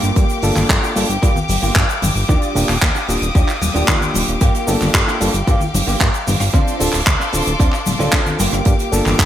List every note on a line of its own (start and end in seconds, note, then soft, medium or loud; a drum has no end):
0.00 0.12 G1 medium
0.00 0.64 A#3 medium
0.00 0.64 F4 medium
0.00 0.64 G4 loud
0.00 2.26 G4 medium
0.00 2.25 F5 medium
0.00 2.27 G5 medium
0.00 6.49 D6 medium
0.00 closed hi-hat medium
0.00 shaker soft
0.00 maracas medium
0.16 0.25 G2 loud
0.16 kick loud
0.16 closed hi-hat medium
0.16 maracas soft
0.16 shaker medium
0.30 closed hi-hat medium
0.30 shaker soft
0.42 0.51 G1 loud
0.42 0.93 A#3 medium
0.42 0.93 D4 medium
0.42 0.93 F4 medium
0.42 0.93 A4 loud
0.42 open hi-hat loud
0.42 maracas medium
0.42 shaker medium
0.56 0.65 G1 medium
0.56 clap soft
0.56 low conga medium
0.56 shaker medium
0.56 maracas soft
0.69 0.78 G2 medium
0.69 kick loud
0.69 clap loud
0.69 closed hi-hat medium
0.69 maracas soft
0.69 shaker medium
0.82 muted clean electric guitar stroke medium
0.82 shaker soft
0.95 1.04 G1 medium
0.95 1.07 A#3 medium
0.95 1.07 D4 medium
0.95 1.08 F4 medium
0.95 1.08 A4 medium
0.95 muted clean electric guitar stroke soft
0.95 open hi-hat loud
0.95 maracas medium
0.95 shaker medium
1.09 1.18 G1 loud
1.09 closed hi-hat medium
1.09 maracas soft
1.09 shaker soft
1.22 1.31 G2 loud
1.22 1.36 A#3 medium
1.22 1.36 F4 medium
1.22 1.36 G4 medium
1.22 kick loud
1.22 closed hi-hat medium
1.22 maracas soft
1.22 shaker medium
1.36 low conga medium
1.36 shaker soft
1.48 1.58 G1 medium
1.48 muted clean electric guitar stroke soft
1.48 open hi-hat loud
1.48 high conga loud
1.48 maracas loud
1.48 shaker medium
1.62 1.71 G1 loud
1.62 1.82 A#3 medium
1.62 1.82 F4 medium
1.62 1.83 G4 medium
1.62 maracas soft
1.62 shaker soft
1.76 1.84 G2 medium
1.76 kick loud
1.76 clap loud
1.76 shaker medium
1.89 closed hi-hat medium
1.89 shaker soft
2.02 2.11 G1 medium
2.02 muted clean electric guitar stroke soft
2.02 open hi-hat loud
2.02 high conga medium
2.02 low conga loud
2.02 maracas medium
2.02 shaker medium
2.16 2.24 G1 medium
2.16 shaker soft
2.16 maracas medium
2.29 2.37 D#2 loud
2.29 2.62 D4 loud
2.29 2.62 F4 medium
2.29 6.50 G4 medium
2.29 2.62 G4 loud
2.29 9.25 F5 medium
2.29 4.39 D#6 medium
2.29 kick loud
2.29 closed hi-hat medium
2.29 maracas soft
2.29 shaker medium
2.42 closed hi-hat medium
2.42 shaker soft
2.55 2.64 D#1 loud
2.55 2.74 A#3 medium
2.55 2.74 D4 medium
2.55 2.74 F4 medium
2.55 2.74 G4 loud
2.55 open hi-hat loud
2.55 maracas medium
2.55 shaker medium
2.69 2.77 D#1 medium
2.69 clap soft
2.69 shaker soft
2.69 maracas soft
2.82 2.90 D#2 medium
2.82 kick loud
2.82 clap loud
2.82 maracas soft
2.82 shaker medium
2.95 muted clean electric guitar stroke medium
2.95 shaker soft
3.08 3.17 D#1 medium
3.08 3.27 A#3 medium
3.08 3.27 D4 medium
3.08 3.27 F4 medium
3.08 3.27 G4 medium
3.08 muted clean electric guitar stroke soft
3.08 open hi-hat loud
3.08 maracas medium
3.08 shaker medium
3.22 3.30 D#1 loud
3.22 closed hi-hat medium
3.22 maracas soft
3.22 shaker soft
3.35 3.43 D#2 loud
3.35 3.48 D4 medium
3.35 3.48 F4 medium
3.35 3.49 G4 medium
3.35 kick loud
3.35 closed hi-hat medium
3.35 maracas soft
3.35 shaker medium
3.49 clap soft
3.49 shaker soft
3.61 3.70 D#1 medium
3.61 muted clean electric guitar stroke soft
3.61 open hi-hat loud
3.61 high conga medium
3.61 maracas medium
3.61 shaker medium
3.74 3.83 D#1 loud
3.74 4.39 A#3 medium
3.74 3.95 D4 medium
3.74 4.40 D4 medium
3.74 3.95 F4 medium
3.74 4.40 F4 medium
3.74 3.95 G4 loud
3.74 4.40 G4 medium
3.74 maracas soft
3.74 shaker soft
3.88 3.97 D#2 medium
3.88 kick loud
3.88 clap loud
3.88 closed hi-hat medium
3.88 maracas soft
3.88 shaker medium
4.01 closed hi-hat soft
4.01 low conga medium
4.01 shaker soft
4.14 4.23 D#1 medium
4.14 muted clean electric guitar stroke soft
4.14 open hi-hat loud
4.14 high conga loud
4.14 maracas medium
4.14 shaker medium
4.27 4.37 D#1 medium
4.27 closed hi-hat soft
4.27 maracas medium
4.27 shaker soft
4.41 4.50 G2 medium
4.41 4.74 A#3 loud
4.41 4.75 F4 medium
4.41 4.75 G4 loud
4.41 6.52 G5 medium
4.41 kick loud
4.41 closed hi-hat medium
4.41 shaker medium
4.41 maracas soft
4.55 closed hi-hat medium
4.55 shaker soft
4.67 4.76 G1 loud
4.67 5.17 A#3 medium
4.67 5.18 D4 medium
4.67 5.18 F4 medium
4.67 5.18 A4 loud
4.67 open hi-hat loud
4.67 shaker medium
4.67 maracas medium
4.81 4.89 G1 medium
4.81 clap soft
4.81 low conga medium
4.81 maracas soft
4.81 shaker soft
4.94 5.03 G2 medium
4.94 kick loud
4.94 clap loud
4.94 shaker medium
5.07 muted clean electric guitar stroke medium
5.07 cross-stick medium
5.07 shaker soft
5.20 5.29 G1 medium
5.20 5.32 A#3 medium
5.20 5.32 D4 medium
5.20 5.32 F4 medium
5.20 5.33 A4 medium
5.20 muted clean electric guitar stroke soft
5.20 open hi-hat loud
5.20 maracas medium
5.20 shaker medium
5.34 5.43 G1 loud
5.34 closed hi-hat medium
5.34 shaker medium
5.34 maracas medium
5.47 5.56 G2 loud
5.47 5.61 A#3 medium
5.47 5.61 F4 medium
5.47 5.61 G4 medium
5.47 kick loud
5.47 closed hi-hat medium
5.47 maracas soft
5.47 shaker medium
5.60 low conga medium
5.60 shaker soft
5.74 5.82 G1 medium
5.74 muted clean electric guitar stroke soft
5.74 open hi-hat loud
5.74 high conga loud
5.74 maracas medium
5.74 shaker medium
5.87 5.96 G1 loud
5.87 6.07 A#3 medium
5.87 6.07 F4 medium
5.87 6.07 G4 medium
5.87 maracas soft
5.87 shaker medium
6.00 6.09 G2 medium
6.00 kick loud
6.00 clap loud
6.00 maracas soft
6.00 shaker medium
6.14 closed hi-hat medium
6.14 shaker soft
6.27 6.35 G1 loud
6.27 muted clean electric guitar stroke soft
6.27 open hi-hat loud
6.27 high conga medium
6.27 low conga medium
6.27 maracas medium
6.27 shaker medium
6.40 6.49 G1 medium
6.40 cross-stick medium
6.40 maracas soft
6.40 shaker medium
6.53 6.62 D2 loud
6.53 6.87 C4 loud
6.53 6.87 D4 loud
6.53 6.87 F4 loud
6.53 8.38 A4 medium
6.53 8.38 C6 medium
6.53 8.38 D6 medium
6.53 kick loud
6.53 closed hi-hat medium
6.53 maracas soft
6.53 shaker medium
6.68 closed hi-hat medium
6.68 shaker soft
6.80 6.89 D1 loud
6.80 6.98 C4 medium
6.80 6.98 D4 medium
6.80 6.99 F4 medium
6.80 6.99 A4 loud
6.80 open hi-hat loud
6.80 maracas medium
6.80 shaker medium
6.93 7.02 D1 loud
6.93 clap soft
6.93 maracas soft
6.93 shaker medium
7.07 7.15 D2 medium
7.07 kick loud
7.07 clap loud
7.07 maracas soft
7.07 shaker medium
7.20 muted clean electric guitar stroke medium
7.20 cross-stick medium
7.20 shaker soft
7.33 7.42 D1 medium
7.33 7.51 C4 medium
7.33 7.51 D4 medium
7.33 7.52 F4 medium
7.33 7.52 A4 medium
7.33 muted clean electric guitar stroke soft
7.33 open hi-hat loud
7.33 maracas medium
7.33 shaker medium
7.46 7.55 D1 loud
7.46 closed hi-hat medium
7.46 maracas medium
7.46 shaker soft
7.59 7.68 D2 loud
7.59 7.73 C4 medium
7.59 7.73 D4 medium
7.59 7.73 F4 medium
7.59 kick loud
7.59 closed hi-hat medium
7.59 maracas soft
7.59 shaker medium
7.72 clap soft
7.72 shaker soft
7.86 7.95 D1 medium
7.86 muted clean electric guitar stroke soft
7.86 open hi-hat loud
7.86 high conga medium
7.86 shaker medium
7.86 maracas medium
7.99 8.08 D1 loud
7.99 8.38 C4 medium
7.99 8.19 C4 medium
7.99 8.38 D4 medium
7.99 8.19 D4 medium
7.99 8.38 F4 medium
7.99 8.20 F4 medium
7.99 8.38 A4 medium
7.99 maracas soft
7.99 shaker soft
8.12 8.21 D2 medium
8.12 kick loud
8.12 clap loud
8.12 shaker medium
8.12 maracas soft
8.26 closed hi-hat soft
8.26 low conga medium
8.26 shaker soft
8.39 8.48 G1 medium
8.39 9.14 A#3 medium
8.39 9.14 F4 medium
8.39 9.25 G4 medium
8.39 9.14 G4 loud
8.39 9.25 D6 medium
8.39 open hi-hat loud
8.39 high conga medium
8.39 maracas medium
8.39 shaker medium
8.52 8.61 G1 medium
8.52 cross-stick medium
8.52 closed hi-hat soft
8.52 maracas medium
8.52 shaker soft
8.65 8.74 G2 loud
8.65 kick loud
8.65 closed hi-hat medium
8.65 maracas soft
8.65 shaker medium
8.79 closed hi-hat medium
8.79 shaker soft
8.92 9.01 G1 loud
8.92 9.25 A#3 medium
8.92 9.25 D4 medium
8.92 9.25 F4 medium
8.92 9.25 A4 loud
8.92 open hi-hat medium
8.92 maracas loud
8.92 shaker medium
9.06 9.14 G1 medium
9.06 clap soft
9.06 low conga medium
9.06 shaker soft
9.06 maracas soft
9.19 9.25 G2 medium
9.19 kick loud
9.19 clap loud
9.19 shaker medium